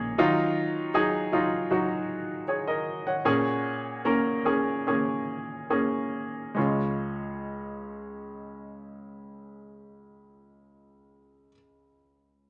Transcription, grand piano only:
0, 0, Header, 1, 2, 480
1, 0, Start_track
1, 0, Key_signature, -5, "major"
1, 0, Tempo, 758534
1, 116, Time_signature, 4, 2, 24, 8
1, 1558, Tempo, 798935
1, 2998, Tempo, 853485
1, 3958, Tempo, 881057
1, 7190, End_track
2, 0, Start_track
2, 0, Title_t, "Grand piano"
2, 0, Program_c, 0, 0
2, 0, Control_c, 0, 64, 127
2, 0, Note_on_c, 0, 58, 62
2, 0, Note_on_c, 0, 61, 57
2, 0, Note_on_c, 0, 63, 68
2, 0, Note_on_c, 0, 68, 69
2, 0, Note_on_c, 0, 70, 67
2, 94, Note_off_c, 0, 58, 0
2, 97, Note_off_c, 0, 61, 0
2, 97, Note_off_c, 0, 68, 0
2, 116, Note_on_c, 0, 54, 76
2, 118, Note_off_c, 0, 63, 0
2, 118, Note_on_c, 0, 63, 69
2, 120, Note_on_c, 0, 51, 48
2, 120, Note_on_c, 0, 65, 85
2, 125, Control_c, 0, 64, 0
2, 128, Note_off_c, 0, 70, 0
2, 219, Control_c, 0, 64, 127
2, 568, Note_off_c, 0, 54, 0
2, 569, Note_off_c, 0, 63, 0
2, 570, Note_off_c, 0, 65, 0
2, 596, Note_on_c, 0, 54, 65
2, 598, Note_on_c, 0, 63, 56
2, 600, Note_on_c, 0, 68, 71
2, 808, Note_off_c, 0, 51, 0
2, 821, Note_off_c, 0, 54, 0
2, 822, Note_off_c, 0, 63, 0
2, 823, Note_off_c, 0, 68, 0
2, 838, Note_on_c, 0, 54, 56
2, 842, Note_on_c, 0, 65, 61
2, 843, Note_on_c, 0, 63, 53
2, 1063, Note_off_c, 0, 54, 0
2, 1065, Note_off_c, 0, 63, 0
2, 1065, Note_off_c, 0, 65, 0
2, 1080, Note_on_c, 0, 54, 57
2, 1082, Note_on_c, 0, 63, 49
2, 1086, Note_on_c, 0, 66, 58
2, 1538, Note_off_c, 0, 54, 0
2, 1538, Note_off_c, 0, 63, 0
2, 1541, Note_off_c, 0, 66, 0
2, 1569, Note_on_c, 0, 73, 42
2, 1573, Note_on_c, 0, 68, 36
2, 1675, Note_off_c, 0, 73, 0
2, 1676, Note_off_c, 0, 68, 0
2, 1686, Note_on_c, 0, 75, 47
2, 1689, Note_on_c, 0, 70, 38
2, 1903, Note_off_c, 0, 75, 0
2, 1905, Note_off_c, 0, 70, 0
2, 1922, Note_on_c, 0, 78, 43
2, 1926, Note_on_c, 0, 73, 35
2, 2031, Note_on_c, 0, 58, 61
2, 2033, Note_on_c, 0, 46, 50
2, 2033, Note_on_c, 0, 61, 58
2, 2035, Note_on_c, 0, 68, 76
2, 2036, Control_c, 0, 64, 0
2, 2131, Control_c, 0, 64, 127
2, 2141, Note_off_c, 0, 78, 0
2, 2143, Note_off_c, 0, 73, 0
2, 2484, Note_off_c, 0, 58, 0
2, 2485, Note_off_c, 0, 61, 0
2, 2486, Note_off_c, 0, 68, 0
2, 2512, Note_on_c, 0, 58, 60
2, 2513, Note_on_c, 0, 61, 52
2, 2516, Note_on_c, 0, 70, 62
2, 2729, Note_off_c, 0, 46, 0
2, 2741, Note_off_c, 0, 58, 0
2, 2741, Note_off_c, 0, 61, 0
2, 2743, Note_off_c, 0, 70, 0
2, 2753, Note_on_c, 0, 58, 52
2, 2755, Note_on_c, 0, 61, 48
2, 2757, Note_on_c, 0, 68, 58
2, 2986, Note_off_c, 0, 58, 0
2, 2987, Note_off_c, 0, 61, 0
2, 2988, Note_off_c, 0, 68, 0
2, 3004, Note_on_c, 0, 58, 46
2, 3004, Note_on_c, 0, 61, 46
2, 3009, Note_on_c, 0, 68, 59
2, 3449, Note_off_c, 0, 58, 0
2, 3449, Note_off_c, 0, 61, 0
2, 3452, Note_off_c, 0, 68, 0
2, 3472, Note_on_c, 0, 58, 51
2, 3473, Note_on_c, 0, 61, 44
2, 3474, Note_on_c, 0, 68, 60
2, 3933, Note_off_c, 0, 58, 0
2, 3934, Note_off_c, 0, 61, 0
2, 3934, Note_off_c, 0, 68, 0
2, 3947, Note_on_c, 0, 56, 46
2, 3957, Note_on_c, 0, 37, 45
2, 3957, Note_on_c, 0, 61, 44
2, 3964, Control_c, 0, 64, 0
2, 3968, Note_on_c, 0, 65, 50
2, 4074, Control_c, 0, 64, 127
2, 6638, Note_off_c, 0, 56, 0
2, 6647, Note_off_c, 0, 61, 0
2, 6648, Note_off_c, 0, 37, 0
2, 6658, Note_off_c, 0, 65, 0
2, 7190, End_track
0, 0, End_of_file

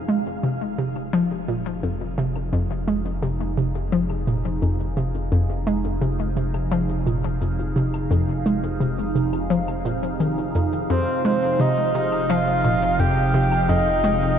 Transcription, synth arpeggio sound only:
0, 0, Header, 1, 2, 480
1, 0, Start_track
1, 0, Key_signature, -4, "minor"
1, 0, Tempo, 697674
1, 1739, Time_signature, 4, 2, 24, 8
1, 9899, End_track
2, 0, Start_track
2, 0, Title_t, "Synth arpeggio sound"
2, 0, Program_c, 0, 84
2, 58, Note_on_c, 0, 56, 71
2, 214, Note_off_c, 0, 56, 0
2, 299, Note_on_c, 0, 48, 71
2, 392, Note_off_c, 0, 48, 0
2, 539, Note_on_c, 0, 48, 74
2, 694, Note_off_c, 0, 48, 0
2, 779, Note_on_c, 0, 53, 102
2, 1007, Note_off_c, 0, 53, 0
2, 1020, Note_on_c, 0, 46, 72
2, 1175, Note_off_c, 0, 46, 0
2, 1261, Note_on_c, 0, 41, 71
2, 1415, Note_off_c, 0, 41, 0
2, 1499, Note_on_c, 0, 48, 72
2, 1592, Note_off_c, 0, 48, 0
2, 1739, Note_on_c, 0, 41, 93
2, 1832, Note_off_c, 0, 41, 0
2, 1979, Note_on_c, 0, 56, 71
2, 2134, Note_off_c, 0, 56, 0
2, 2219, Note_on_c, 0, 48, 74
2, 2312, Note_off_c, 0, 48, 0
2, 2460, Note_on_c, 0, 48, 73
2, 2615, Note_off_c, 0, 48, 0
2, 2699, Note_on_c, 0, 53, 96
2, 2927, Note_off_c, 0, 53, 0
2, 2940, Note_on_c, 0, 46, 72
2, 3095, Note_off_c, 0, 46, 0
2, 3180, Note_on_c, 0, 41, 71
2, 3335, Note_off_c, 0, 41, 0
2, 3419, Note_on_c, 0, 48, 72
2, 3512, Note_off_c, 0, 48, 0
2, 3660, Note_on_c, 0, 41, 92
2, 3753, Note_off_c, 0, 41, 0
2, 3899, Note_on_c, 0, 56, 75
2, 4055, Note_off_c, 0, 56, 0
2, 4138, Note_on_c, 0, 48, 72
2, 4232, Note_off_c, 0, 48, 0
2, 4380, Note_on_c, 0, 48, 73
2, 4535, Note_off_c, 0, 48, 0
2, 4620, Note_on_c, 0, 53, 102
2, 4847, Note_off_c, 0, 53, 0
2, 4861, Note_on_c, 0, 46, 73
2, 5015, Note_off_c, 0, 46, 0
2, 5101, Note_on_c, 0, 41, 73
2, 5255, Note_off_c, 0, 41, 0
2, 5339, Note_on_c, 0, 48, 73
2, 5432, Note_off_c, 0, 48, 0
2, 5578, Note_on_c, 0, 41, 93
2, 5672, Note_off_c, 0, 41, 0
2, 5820, Note_on_c, 0, 56, 74
2, 5975, Note_off_c, 0, 56, 0
2, 6058, Note_on_c, 0, 48, 74
2, 6151, Note_off_c, 0, 48, 0
2, 6298, Note_on_c, 0, 48, 73
2, 6454, Note_off_c, 0, 48, 0
2, 6538, Note_on_c, 0, 53, 98
2, 6766, Note_off_c, 0, 53, 0
2, 6779, Note_on_c, 0, 46, 73
2, 6872, Note_off_c, 0, 46, 0
2, 7019, Note_on_c, 0, 51, 74
2, 7174, Note_off_c, 0, 51, 0
2, 7259, Note_on_c, 0, 41, 73
2, 7414, Note_off_c, 0, 41, 0
2, 7499, Note_on_c, 0, 41, 97
2, 7592, Note_off_c, 0, 41, 0
2, 7740, Note_on_c, 0, 56, 73
2, 7895, Note_off_c, 0, 56, 0
2, 7978, Note_on_c, 0, 48, 73
2, 8072, Note_off_c, 0, 48, 0
2, 8220, Note_on_c, 0, 48, 74
2, 8375, Note_off_c, 0, 48, 0
2, 8461, Note_on_c, 0, 53, 103
2, 8688, Note_off_c, 0, 53, 0
2, 8700, Note_on_c, 0, 46, 73
2, 8855, Note_off_c, 0, 46, 0
2, 8939, Note_on_c, 0, 41, 74
2, 9167, Note_off_c, 0, 41, 0
2, 9179, Note_on_c, 0, 48, 74
2, 9272, Note_off_c, 0, 48, 0
2, 9419, Note_on_c, 0, 41, 98
2, 9512, Note_off_c, 0, 41, 0
2, 9659, Note_on_c, 0, 56, 74
2, 9814, Note_off_c, 0, 56, 0
2, 9899, End_track
0, 0, End_of_file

